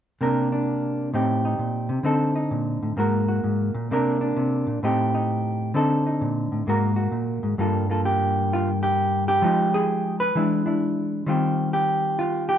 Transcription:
0.21 C3 A#3 D4 A#4
0.52 D4
1.14 A2 C4 D#4 G4
1.45 D#4
1.59 A#2
1.89 C3
2.03 D3 C4 D#4 A4
2.36 D#4
2.51 A#2
2.83 A2
2.97 G#2 A#3 F#4 A#4
3.28 F#4
3.44 G#2
3.74 A#2
3.91 C3 A#3 D4 A#4
4.21 D4
4.36 C3
4.67 A#2
4.83 A2 C4 D#4 G4
5.14 D#4
5.74 D3 C4 D#4 A4
6.07 D#4
6.21 A#2
6.52 A2
6.67 G#2 A#3 F#4 A#4
6.96 F#4
7.12 A#2
7.43 G#2
7.58 G2 G3 A#3 F4 A4
7.90 A#3 F4 A4
8.05 G4
8.53 F4
8.83 G4
9.28 G4
9.42 F3 G#3 D#4 F4
9.74 G#4
10.20 B4
10.35 E3 G#3 D4 E4
10.66 D4 E4
11.27 D#3 G3 C4 F4 G4
11.73 G4
12.19 F4
12.49 G4

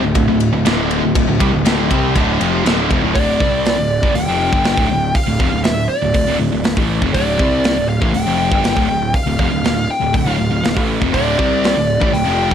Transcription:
0.03 D1 D2 A2
0.15 D1 D2 A2, kick, ride
0.28 D1 D2 A2
0.40 ride
0.52 D1 D2 A2
0.65 D1 D2 A2 D3, snare, ride
0.91 ride
1.02 D1 D2 A2
1.14 D1 D2 A2, kick, ride
1.28 D1 D2 A2
1.40 C2 C3 G3, kick, ride
1.52 D1 D2 A2
1.65 D1 D2 A2 D3, snare, ride
1.90 C2 C3 G3 C4, kick, ride
2.15 D1 D2 A2 D3, kick, ride
2.40 F1 F2 C3 F3, ride
2.65 D1 D2 A2 D3, snare, ride
2.91 F1 F2 C3, kick, ride
3.02 D1 D2 A2
3.15 D1 D2 A2 D3 D5, kick, open hi-hat
3.40 C2 C3 G3 C4, kick
3.65 snare, open hi-hat
3.78 D1 D2 A2
4.03 A1 A2 E3, kick
4.15 D1 D2 A2 G5, open hi-hat
4.28 F1 F2 C3 F3
4.53 G1 G2 D3 G3, kick
4.64 snare, open hi-hat
4.77 D1 D2 A2, kick
4.90 D1 D2 A2
5.15 F5, kick, open hi-hat
5.27 D1 D2 A2
5.40 F1 F2 C3, kick
5.51 D1 D2 A2
5.64 D1 D2 A2 E5, snare, open hi-hat
5.89 D5
6.02 D1 D2 A2
6.14 D1 D2 A2, kick, open hi-hat
6.27 D1 D2 A2
6.39 D1 D2 A2
6.52 D1 D2 A2
6.64 D1 D2 A2, snare, open hi-hat
6.77 A1 A2 E3 A3, kick
7.01 F1 F2 C3, kick
7.13 D1 D2 A2 D3 D5, kick, open hi-hat
7.38 C2 C3 G3 C4, kick
7.64 snare, open hi-hat
7.76 D1 D2 A2
7.89 F5
8.00 A1 A2 E3, kick
8.12 D1 D2 A2 G5, open hi-hat
8.26 F1 F2 C3 F3
8.51 G1 G2 D3 G3, kick
8.64 snare, open hi-hat
8.76 D1 D2 A2, kick
8.89 D1 D2 A2
9.14 F5, kick, open hi-hat
9.26 D1 D2 A2
9.38 F1 F2 C3 F5, kick
9.50 D1 D2 A2
9.63 D1 D2 A2, snare, open hi-hat
9.91 G5
10.00 D1 D2 A2
10.12 D1 D2 A2 F5, kick, open hi-hat
10.25 D1 D2 A2
10.38 D1 D2 A2
10.50 D1 D2 A2
10.63 D1 D2 A2, snare, open hi-hat
10.75 A1 A2 E3 A3, kick
11.01 F1 F2 C3, kick
11.14 D1 D2 A2 D3 D5, kick, open hi-hat
11.37 C2 C3 G3 C4, kick
11.64 snare, open hi-hat
11.76 D1 D2 A2
12.00 A1 A2 E3, kick
12.13 D1 D2 A2 G5, open hi-hat
12.25 F1 F2 C3 F3
12.50 G2 D3 G3

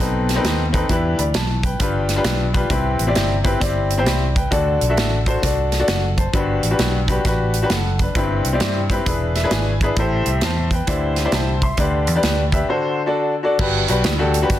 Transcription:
0.00 B1 B2 C4 D#4 A4 B4, kick, closed hi-hat
0.29 snare, closed hi-hat
0.35 C4 D#4 A4 B4
0.44 D#2, snare, closed hi-hat
0.73 C4 D#4 A4 B4, kick, closed hi-hat
0.89 E2 E3 D4 E4 G4 B4, kick, closed hi-hat
1.19 D2 D5 B5, closed hi-hat
1.34 B1 A5, snare, closed hi-hat
1.63 B4 G5, kick, closed hi-hat
1.79 G1 G2 D4 F4 G4 B4, kick, closed hi-hat
2.09 snare, closed hi-hat
2.16 D4 F4 G4 B4
2.24 B1, snare, closed hi-hat
2.53 D4 F4 G4 B4, kick, closed hi-hat
2.70 C2 C3 C4 E4 G4 B4, kick, closed hi-hat
2.99 A1, closed hi-hat
3.07 C4 E4 G4 D5
3.15 G1, snare, closed hi-hat
3.44 C4 E4 G4 B4, kick, closed hi-hat
3.60 G1 C4 E4 G4 D5, kick, snare, closed hi-hat
3.91 closed hi-hat
3.98 C4 E4 G4 C5
4.06 C2 D5 B5, snare, closed hi-hat
4.35 B4 G5, kick, closed hi-hat
4.51 D2 D3 D4 F#4 A4 D5, kick, closed hi-hat
4.81 B1, closed hi-hat
4.89 D4 F#4 A4 E5
4.97 A1, snare, closed hi-hat
5.26 D4 F#4 A4 C5, kick, closed hi-hat
5.42 C2 D4 F#4 A4 D5, kick, snare, closed hi-hat
5.72 snare, closed hi-hat
5.79 D4 F#4 A4 D5
5.88 F#1 A4 F#5, snare, closed hi-hat
6.17 C5 A5, kick, closed hi-hat
6.33 G1 G2 D4 F#4 G4 B4, kick, closed hi-hat
6.63 A1, closed hi-hat
6.70 D4 F#4 G4 B4
6.79 B1, snare, closed hi-hat
7.08 D4 F#4 G4 B4, kick, closed hi-hat
7.24 A1 D4 F#4 G4 B4, kick, snare, closed hi-hat
7.54 closed hi-hat
7.62 D4 F#4 G4 B4
7.69 F#1 A4 F#5, snare, closed hi-hat
7.99 D4 B4, kick, closed hi-hat
8.15 G1 G2 C4 E4 G4 B4, kick, closed hi-hat
8.44 C2, closed hi-hat
8.53 C4 E4 G4 D5
8.60 G2, snare, closed hi-hat
8.90 C4 E4 G4 B4, kick, closed hi-hat
9.05 E1 E3 D4 E4 G#4 B4, kick, closed hi-hat
9.36 E5, snare, closed hi-hat
9.43 D4 E4 G#4 B4
9.51 G#1 G#5, snare, closed hi-hat
9.81 D4 E4 G#4 B4 B5, kick, closed hi-hat
9.97 A1 A2 E4 G4 A4 C5, kick, closed hi-hat
10.26 C2 G4 E5, closed hi-hat
10.41 E2 C5 A5, snare, closed hi-hat
10.71 B4 G5, kick, closed hi-hat
10.87 D2 D3 E4 G4 C5 D5, kick, closed hi-hat
11.16 snare, closed hi-hat
11.25 E4 G4 C5 D5
11.32 C2 C5 A5, snare, closed hi-hat
11.62 E5 C6, kick, closed hi-hat
11.77 D2 D3 D4 G4 B4 D5, kick, closed hi-hat
12.07 E2, closed hi-hat
12.15 D4 G4 B4 D5
12.23 D2, snare, closed hi-hat
12.52 D4 G4 B4 E5, kick, closed hi-hat
12.68 D3 D4 F#4 A4 C5
13.06 D4 F#4 A4 D5
13.43 D4 F#4 A4 D5
13.59 G1 G2 D4 F#4 G4 B4, kick, crash
13.88 B1 D4 F#4 G4 B4, closed hi-hat
14.04 D2, snare, closed hi-hat
14.18 D4 F#4 G4 A4
14.34 closed hi-hat
14.41 D4 F#4 G4 B4
14.49 G1, kick, snare, closed hi-hat

